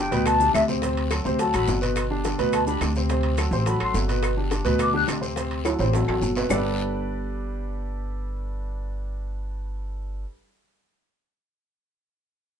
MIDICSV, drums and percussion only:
0, 0, Header, 1, 2, 480
1, 0, Start_track
1, 0, Key_signature, 1, "major"
1, 0, Tempo, 284091
1, 1389, Time_signature, 4, 2, 24, 8
1, 21284, End_track
2, 0, Start_track
2, 0, Title_t, "Drums"
2, 201, Note_on_c, 9, 60, 34
2, 201, Note_on_c, 9, 70, 30
2, 203, Note_on_c, 9, 73, 61
2, 207, Note_on_c, 9, 65, 64
2, 370, Note_off_c, 9, 60, 0
2, 370, Note_off_c, 9, 70, 0
2, 372, Note_off_c, 9, 73, 0
2, 376, Note_off_c, 9, 65, 0
2, 433, Note_on_c, 9, 60, 59
2, 437, Note_on_c, 9, 74, 64
2, 440, Note_on_c, 9, 70, 62
2, 444, Note_on_c, 9, 75, 55
2, 452, Note_on_c, 9, 65, 83
2, 602, Note_off_c, 9, 60, 0
2, 606, Note_off_c, 9, 74, 0
2, 609, Note_off_c, 9, 70, 0
2, 612, Note_off_c, 9, 75, 0
2, 621, Note_off_c, 9, 65, 0
2, 669, Note_on_c, 9, 60, 30
2, 683, Note_on_c, 9, 70, 60
2, 838, Note_off_c, 9, 60, 0
2, 852, Note_off_c, 9, 70, 0
2, 921, Note_on_c, 9, 75, 63
2, 923, Note_on_c, 9, 60, 30
2, 923, Note_on_c, 9, 61, 69
2, 923, Note_on_c, 9, 73, 70
2, 927, Note_on_c, 9, 70, 68
2, 935, Note_on_c, 9, 65, 73
2, 935, Note_on_c, 9, 66, 76
2, 1090, Note_off_c, 9, 75, 0
2, 1092, Note_off_c, 9, 60, 0
2, 1092, Note_off_c, 9, 61, 0
2, 1092, Note_off_c, 9, 73, 0
2, 1096, Note_off_c, 9, 70, 0
2, 1103, Note_off_c, 9, 65, 0
2, 1103, Note_off_c, 9, 66, 0
2, 1153, Note_on_c, 9, 60, 32
2, 1154, Note_on_c, 9, 73, 76
2, 1165, Note_on_c, 9, 70, 27
2, 1322, Note_off_c, 9, 60, 0
2, 1323, Note_off_c, 9, 73, 0
2, 1334, Note_off_c, 9, 70, 0
2, 1385, Note_on_c, 9, 60, 52
2, 1389, Note_on_c, 9, 74, 62
2, 1399, Note_on_c, 9, 70, 66
2, 1406, Note_on_c, 9, 65, 66
2, 1554, Note_off_c, 9, 60, 0
2, 1558, Note_off_c, 9, 74, 0
2, 1568, Note_off_c, 9, 70, 0
2, 1575, Note_off_c, 9, 65, 0
2, 1646, Note_on_c, 9, 65, 66
2, 1815, Note_off_c, 9, 65, 0
2, 1870, Note_on_c, 9, 70, 57
2, 1870, Note_on_c, 9, 73, 69
2, 1871, Note_on_c, 9, 60, 51
2, 1878, Note_on_c, 9, 65, 85
2, 1878, Note_on_c, 9, 66, 49
2, 1883, Note_on_c, 9, 75, 62
2, 2039, Note_off_c, 9, 70, 0
2, 2039, Note_off_c, 9, 73, 0
2, 2040, Note_off_c, 9, 60, 0
2, 2047, Note_off_c, 9, 65, 0
2, 2047, Note_off_c, 9, 66, 0
2, 2052, Note_off_c, 9, 75, 0
2, 2099, Note_on_c, 9, 73, 54
2, 2121, Note_on_c, 9, 60, 33
2, 2125, Note_on_c, 9, 70, 28
2, 2268, Note_off_c, 9, 73, 0
2, 2290, Note_off_c, 9, 60, 0
2, 2294, Note_off_c, 9, 70, 0
2, 2342, Note_on_c, 9, 74, 66
2, 2352, Note_on_c, 9, 60, 54
2, 2352, Note_on_c, 9, 70, 60
2, 2356, Note_on_c, 9, 65, 62
2, 2511, Note_off_c, 9, 74, 0
2, 2521, Note_off_c, 9, 60, 0
2, 2521, Note_off_c, 9, 70, 0
2, 2525, Note_off_c, 9, 65, 0
2, 2596, Note_on_c, 9, 70, 57
2, 2599, Note_on_c, 9, 65, 81
2, 2603, Note_on_c, 9, 60, 29
2, 2603, Note_on_c, 9, 75, 52
2, 2765, Note_off_c, 9, 70, 0
2, 2768, Note_off_c, 9, 65, 0
2, 2772, Note_off_c, 9, 60, 0
2, 2772, Note_off_c, 9, 75, 0
2, 2831, Note_on_c, 9, 70, 64
2, 2835, Note_on_c, 9, 73, 65
2, 2842, Note_on_c, 9, 66, 77
2, 2852, Note_on_c, 9, 60, 31
2, 2852, Note_on_c, 9, 61, 79
2, 3000, Note_off_c, 9, 70, 0
2, 3004, Note_off_c, 9, 73, 0
2, 3011, Note_off_c, 9, 66, 0
2, 3020, Note_off_c, 9, 60, 0
2, 3020, Note_off_c, 9, 61, 0
2, 3062, Note_on_c, 9, 73, 70
2, 3075, Note_on_c, 9, 60, 33
2, 3085, Note_on_c, 9, 70, 27
2, 3096, Note_on_c, 9, 65, 68
2, 3231, Note_off_c, 9, 73, 0
2, 3244, Note_off_c, 9, 60, 0
2, 3254, Note_off_c, 9, 70, 0
2, 3264, Note_off_c, 9, 65, 0
2, 3310, Note_on_c, 9, 60, 54
2, 3310, Note_on_c, 9, 74, 56
2, 3311, Note_on_c, 9, 70, 68
2, 3326, Note_on_c, 9, 65, 87
2, 3327, Note_on_c, 9, 75, 58
2, 3479, Note_off_c, 9, 60, 0
2, 3479, Note_off_c, 9, 74, 0
2, 3480, Note_off_c, 9, 70, 0
2, 3495, Note_off_c, 9, 65, 0
2, 3496, Note_off_c, 9, 75, 0
2, 3790, Note_on_c, 9, 70, 64
2, 3797, Note_on_c, 9, 73, 62
2, 3799, Note_on_c, 9, 60, 53
2, 3803, Note_on_c, 9, 65, 61
2, 3803, Note_on_c, 9, 66, 55
2, 3959, Note_off_c, 9, 70, 0
2, 3966, Note_off_c, 9, 73, 0
2, 3968, Note_off_c, 9, 60, 0
2, 3972, Note_off_c, 9, 65, 0
2, 3972, Note_off_c, 9, 66, 0
2, 4033, Note_on_c, 9, 70, 27
2, 4034, Note_on_c, 9, 60, 34
2, 4037, Note_on_c, 9, 73, 54
2, 4041, Note_on_c, 9, 65, 61
2, 4202, Note_off_c, 9, 70, 0
2, 4203, Note_off_c, 9, 60, 0
2, 4206, Note_off_c, 9, 73, 0
2, 4210, Note_off_c, 9, 65, 0
2, 4269, Note_on_c, 9, 70, 58
2, 4275, Note_on_c, 9, 75, 54
2, 4277, Note_on_c, 9, 65, 83
2, 4285, Note_on_c, 9, 60, 55
2, 4285, Note_on_c, 9, 74, 62
2, 4438, Note_off_c, 9, 70, 0
2, 4444, Note_off_c, 9, 75, 0
2, 4446, Note_off_c, 9, 65, 0
2, 4454, Note_off_c, 9, 60, 0
2, 4454, Note_off_c, 9, 74, 0
2, 4514, Note_on_c, 9, 70, 55
2, 4518, Note_on_c, 9, 60, 32
2, 4683, Note_off_c, 9, 70, 0
2, 4687, Note_off_c, 9, 60, 0
2, 4747, Note_on_c, 9, 65, 82
2, 4747, Note_on_c, 9, 66, 66
2, 4755, Note_on_c, 9, 75, 57
2, 4756, Note_on_c, 9, 70, 57
2, 4756, Note_on_c, 9, 73, 66
2, 4767, Note_on_c, 9, 60, 29
2, 4767, Note_on_c, 9, 61, 70
2, 4916, Note_off_c, 9, 65, 0
2, 4916, Note_off_c, 9, 66, 0
2, 4924, Note_off_c, 9, 75, 0
2, 4925, Note_off_c, 9, 70, 0
2, 4925, Note_off_c, 9, 73, 0
2, 4936, Note_off_c, 9, 60, 0
2, 4936, Note_off_c, 9, 61, 0
2, 4986, Note_on_c, 9, 70, 26
2, 4996, Note_on_c, 9, 60, 31
2, 4998, Note_on_c, 9, 73, 67
2, 5155, Note_off_c, 9, 70, 0
2, 5165, Note_off_c, 9, 60, 0
2, 5167, Note_off_c, 9, 73, 0
2, 5227, Note_on_c, 9, 70, 57
2, 5230, Note_on_c, 9, 65, 61
2, 5236, Note_on_c, 9, 60, 51
2, 5236, Note_on_c, 9, 74, 55
2, 5396, Note_off_c, 9, 70, 0
2, 5399, Note_off_c, 9, 65, 0
2, 5405, Note_off_c, 9, 60, 0
2, 5405, Note_off_c, 9, 74, 0
2, 5462, Note_on_c, 9, 65, 66
2, 5631, Note_off_c, 9, 65, 0
2, 5699, Note_on_c, 9, 70, 59
2, 5708, Note_on_c, 9, 65, 85
2, 5708, Note_on_c, 9, 66, 47
2, 5713, Note_on_c, 9, 60, 56
2, 5718, Note_on_c, 9, 75, 61
2, 5723, Note_on_c, 9, 73, 67
2, 5868, Note_off_c, 9, 70, 0
2, 5877, Note_off_c, 9, 65, 0
2, 5877, Note_off_c, 9, 66, 0
2, 5882, Note_off_c, 9, 60, 0
2, 5887, Note_off_c, 9, 75, 0
2, 5891, Note_off_c, 9, 73, 0
2, 5941, Note_on_c, 9, 60, 33
2, 5949, Note_on_c, 9, 70, 27
2, 5959, Note_on_c, 9, 73, 58
2, 6110, Note_off_c, 9, 60, 0
2, 6118, Note_off_c, 9, 70, 0
2, 6128, Note_off_c, 9, 73, 0
2, 6178, Note_on_c, 9, 74, 60
2, 6187, Note_on_c, 9, 60, 57
2, 6187, Note_on_c, 9, 65, 62
2, 6197, Note_on_c, 9, 70, 65
2, 6347, Note_off_c, 9, 74, 0
2, 6356, Note_off_c, 9, 60, 0
2, 6356, Note_off_c, 9, 65, 0
2, 6366, Note_off_c, 9, 70, 0
2, 6423, Note_on_c, 9, 60, 27
2, 6427, Note_on_c, 9, 65, 77
2, 6434, Note_on_c, 9, 75, 53
2, 6592, Note_off_c, 9, 60, 0
2, 6596, Note_off_c, 9, 65, 0
2, 6603, Note_off_c, 9, 75, 0
2, 6662, Note_on_c, 9, 60, 29
2, 6662, Note_on_c, 9, 61, 69
2, 6666, Note_on_c, 9, 70, 62
2, 6667, Note_on_c, 9, 73, 73
2, 6673, Note_on_c, 9, 66, 77
2, 6831, Note_off_c, 9, 60, 0
2, 6831, Note_off_c, 9, 61, 0
2, 6835, Note_off_c, 9, 70, 0
2, 6836, Note_off_c, 9, 73, 0
2, 6842, Note_off_c, 9, 66, 0
2, 6900, Note_on_c, 9, 60, 34
2, 6909, Note_on_c, 9, 73, 62
2, 6914, Note_on_c, 9, 70, 27
2, 6915, Note_on_c, 9, 65, 62
2, 7069, Note_off_c, 9, 60, 0
2, 7078, Note_off_c, 9, 73, 0
2, 7083, Note_off_c, 9, 65, 0
2, 7083, Note_off_c, 9, 70, 0
2, 7139, Note_on_c, 9, 60, 59
2, 7143, Note_on_c, 9, 65, 80
2, 7149, Note_on_c, 9, 70, 58
2, 7161, Note_on_c, 9, 75, 64
2, 7308, Note_off_c, 9, 60, 0
2, 7312, Note_off_c, 9, 65, 0
2, 7318, Note_off_c, 9, 70, 0
2, 7330, Note_off_c, 9, 75, 0
2, 7617, Note_on_c, 9, 73, 57
2, 7623, Note_on_c, 9, 60, 56
2, 7623, Note_on_c, 9, 65, 61
2, 7623, Note_on_c, 9, 66, 52
2, 7628, Note_on_c, 9, 70, 53
2, 7786, Note_off_c, 9, 73, 0
2, 7792, Note_off_c, 9, 60, 0
2, 7792, Note_off_c, 9, 65, 0
2, 7792, Note_off_c, 9, 66, 0
2, 7797, Note_off_c, 9, 70, 0
2, 7851, Note_on_c, 9, 73, 55
2, 7858, Note_on_c, 9, 60, 31
2, 7866, Note_on_c, 9, 70, 29
2, 7871, Note_on_c, 9, 65, 56
2, 8020, Note_off_c, 9, 73, 0
2, 8027, Note_off_c, 9, 60, 0
2, 8035, Note_off_c, 9, 70, 0
2, 8040, Note_off_c, 9, 65, 0
2, 8096, Note_on_c, 9, 70, 59
2, 8097, Note_on_c, 9, 60, 52
2, 8105, Note_on_c, 9, 65, 85
2, 8110, Note_on_c, 9, 75, 52
2, 8265, Note_off_c, 9, 70, 0
2, 8266, Note_off_c, 9, 60, 0
2, 8274, Note_off_c, 9, 65, 0
2, 8279, Note_off_c, 9, 75, 0
2, 8338, Note_on_c, 9, 60, 32
2, 8507, Note_off_c, 9, 60, 0
2, 8578, Note_on_c, 9, 60, 29
2, 8578, Note_on_c, 9, 61, 75
2, 8580, Note_on_c, 9, 73, 68
2, 8588, Note_on_c, 9, 70, 60
2, 8592, Note_on_c, 9, 75, 53
2, 8593, Note_on_c, 9, 65, 84
2, 8593, Note_on_c, 9, 66, 70
2, 8747, Note_off_c, 9, 60, 0
2, 8747, Note_off_c, 9, 61, 0
2, 8749, Note_off_c, 9, 73, 0
2, 8757, Note_off_c, 9, 70, 0
2, 8761, Note_off_c, 9, 75, 0
2, 8762, Note_off_c, 9, 65, 0
2, 8762, Note_off_c, 9, 66, 0
2, 8827, Note_on_c, 9, 60, 31
2, 8830, Note_on_c, 9, 73, 68
2, 8835, Note_on_c, 9, 70, 25
2, 8996, Note_off_c, 9, 60, 0
2, 8999, Note_off_c, 9, 73, 0
2, 9004, Note_off_c, 9, 70, 0
2, 9058, Note_on_c, 9, 60, 51
2, 9061, Note_on_c, 9, 74, 63
2, 9074, Note_on_c, 9, 70, 63
2, 9082, Note_on_c, 9, 65, 61
2, 9227, Note_off_c, 9, 60, 0
2, 9230, Note_off_c, 9, 74, 0
2, 9243, Note_off_c, 9, 70, 0
2, 9251, Note_off_c, 9, 65, 0
2, 9311, Note_on_c, 9, 65, 56
2, 9480, Note_off_c, 9, 65, 0
2, 9539, Note_on_c, 9, 73, 56
2, 9545, Note_on_c, 9, 60, 52
2, 9552, Note_on_c, 9, 70, 56
2, 9553, Note_on_c, 9, 65, 88
2, 9555, Note_on_c, 9, 75, 54
2, 9708, Note_off_c, 9, 73, 0
2, 9714, Note_off_c, 9, 60, 0
2, 9721, Note_off_c, 9, 70, 0
2, 9722, Note_off_c, 9, 65, 0
2, 9724, Note_off_c, 9, 75, 0
2, 9777, Note_on_c, 9, 73, 58
2, 9796, Note_on_c, 9, 65, 72
2, 9797, Note_on_c, 9, 60, 32
2, 9800, Note_on_c, 9, 70, 27
2, 9946, Note_off_c, 9, 73, 0
2, 9965, Note_off_c, 9, 65, 0
2, 9966, Note_off_c, 9, 60, 0
2, 9969, Note_off_c, 9, 70, 0
2, 10027, Note_on_c, 9, 60, 55
2, 10031, Note_on_c, 9, 74, 58
2, 10046, Note_on_c, 9, 66, 85
2, 10048, Note_on_c, 9, 70, 62
2, 10196, Note_off_c, 9, 60, 0
2, 10200, Note_off_c, 9, 74, 0
2, 10215, Note_off_c, 9, 66, 0
2, 10217, Note_off_c, 9, 70, 0
2, 10272, Note_on_c, 9, 60, 27
2, 10276, Note_on_c, 9, 75, 53
2, 10284, Note_on_c, 9, 66, 75
2, 10441, Note_off_c, 9, 60, 0
2, 10445, Note_off_c, 9, 75, 0
2, 10453, Note_off_c, 9, 66, 0
2, 10502, Note_on_c, 9, 73, 65
2, 10517, Note_on_c, 9, 60, 30
2, 10517, Note_on_c, 9, 61, 76
2, 10517, Note_on_c, 9, 70, 55
2, 10671, Note_off_c, 9, 73, 0
2, 10686, Note_off_c, 9, 60, 0
2, 10686, Note_off_c, 9, 61, 0
2, 10686, Note_off_c, 9, 70, 0
2, 10737, Note_on_c, 9, 73, 69
2, 10755, Note_on_c, 9, 70, 23
2, 10757, Note_on_c, 9, 66, 86
2, 10764, Note_on_c, 9, 60, 31
2, 10906, Note_off_c, 9, 73, 0
2, 10924, Note_off_c, 9, 70, 0
2, 10926, Note_off_c, 9, 66, 0
2, 10933, Note_off_c, 9, 60, 0
2, 10968, Note_on_c, 9, 74, 74
2, 10986, Note_on_c, 9, 61, 77
2, 10986, Note_on_c, 9, 70, 87
2, 10990, Note_on_c, 9, 75, 80
2, 10991, Note_on_c, 9, 66, 82
2, 11137, Note_off_c, 9, 74, 0
2, 11155, Note_off_c, 9, 61, 0
2, 11155, Note_off_c, 9, 70, 0
2, 11159, Note_off_c, 9, 66, 0
2, 11159, Note_off_c, 9, 75, 0
2, 21284, End_track
0, 0, End_of_file